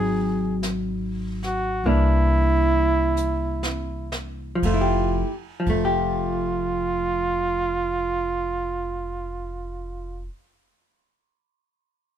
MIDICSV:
0, 0, Header, 1, 5, 480
1, 0, Start_track
1, 0, Key_signature, -1, "major"
1, 0, Tempo, 1202405
1, 737, Tempo, 1324503
1, 1217, Tempo, 1459854
1, 1697, Time_signature, 4, 2, 24, 8
1, 1697, Tempo, 1526718
1, 4070, End_track
2, 0, Start_track
2, 0, Title_t, "Flugelhorn"
2, 0, Program_c, 0, 56
2, 0, Note_on_c, 0, 68, 75
2, 242, Note_off_c, 0, 68, 0
2, 578, Note_on_c, 0, 66, 74
2, 745, Note_on_c, 0, 64, 78
2, 750, Note_off_c, 0, 66, 0
2, 1542, Note_off_c, 0, 64, 0
2, 1702, Note_on_c, 0, 65, 67
2, 1884, Note_off_c, 0, 65, 0
2, 2028, Note_on_c, 0, 65, 81
2, 3474, Note_off_c, 0, 65, 0
2, 4070, End_track
3, 0, Start_track
3, 0, Title_t, "Hollow-body jazz guitar"
3, 0, Program_c, 1, 26
3, 0, Note_on_c, 1, 54, 42
3, 0, Note_on_c, 1, 60, 43
3, 0, Note_on_c, 1, 63, 46
3, 731, Note_off_c, 1, 54, 0
3, 741, Note_off_c, 1, 60, 0
3, 741, Note_on_c, 1, 52, 42
3, 743, Note_on_c, 1, 58, 45
3, 745, Note_off_c, 1, 63, 0
3, 746, Note_on_c, 1, 62, 45
3, 1671, Note_off_c, 1, 52, 0
3, 1672, Note_on_c, 1, 53, 48
3, 1700, Note_off_c, 1, 58, 0
3, 1701, Note_off_c, 1, 62, 0
3, 1705, Note_on_c, 1, 57, 53
3, 1731, Note_on_c, 1, 64, 52
3, 1754, Note_on_c, 1, 67, 55
3, 1882, Note_off_c, 1, 53, 0
3, 1898, Note_off_c, 1, 57, 0
3, 1911, Note_off_c, 1, 64, 0
3, 1923, Note_off_c, 1, 67, 0
3, 2001, Note_on_c, 1, 53, 46
3, 2032, Note_on_c, 1, 57, 55
3, 2080, Note_on_c, 1, 67, 54
3, 3460, Note_off_c, 1, 53, 0
3, 3491, Note_off_c, 1, 57, 0
3, 3539, Note_off_c, 1, 67, 0
3, 4070, End_track
4, 0, Start_track
4, 0, Title_t, "Upright bass"
4, 0, Program_c, 2, 32
4, 0, Note_on_c, 2, 32, 76
4, 723, Note_off_c, 2, 32, 0
4, 734, Note_on_c, 2, 36, 69
4, 1683, Note_off_c, 2, 36, 0
4, 1696, Note_on_c, 2, 29, 66
4, 1881, Note_off_c, 2, 29, 0
4, 2022, Note_on_c, 2, 29, 72
4, 3468, Note_off_c, 2, 29, 0
4, 4070, End_track
5, 0, Start_track
5, 0, Title_t, "Drums"
5, 251, Note_on_c, 9, 25, 29
5, 251, Note_on_c, 9, 38, 43
5, 251, Note_on_c, 9, 44, 54
5, 291, Note_off_c, 9, 38, 0
5, 291, Note_off_c, 9, 44, 0
5, 570, Note_on_c, 9, 38, 23
5, 610, Note_off_c, 9, 38, 0
5, 736, Note_off_c, 9, 25, 0
5, 736, Note_on_c, 9, 25, 27
5, 1215, Note_on_c, 9, 44, 42
5, 1248, Note_off_c, 9, 44, 0
5, 1368, Note_on_c, 9, 38, 44
5, 1401, Note_off_c, 9, 38, 0
5, 1439, Note_off_c, 9, 25, 0
5, 1529, Note_on_c, 9, 38, 55
5, 1562, Note_off_c, 9, 38, 0
5, 1695, Note_on_c, 9, 36, 49
5, 1696, Note_on_c, 9, 51, 47
5, 1727, Note_off_c, 9, 36, 0
5, 1728, Note_off_c, 9, 51, 0
5, 2022, Note_on_c, 9, 51, 42
5, 2023, Note_on_c, 9, 36, 42
5, 2053, Note_off_c, 9, 51, 0
5, 2054, Note_off_c, 9, 36, 0
5, 4070, End_track
0, 0, End_of_file